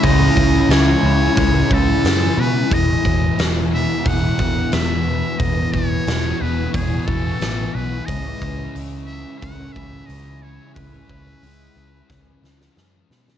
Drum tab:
HH |o---o---o---o---|o---o---o---o---|o---o---o---o---|o---o---o---o---|
SD |----o-------o---|----o-------o---|----o-------o---|----------------|
BD |o-o-----o-o-----|o-o-----o-o-----|o-o-----o-o-----|o-o-----o-o-----|

HH |o---o-----------|
SD |--------o-ooo-oo|
BD |o-o-----o-------|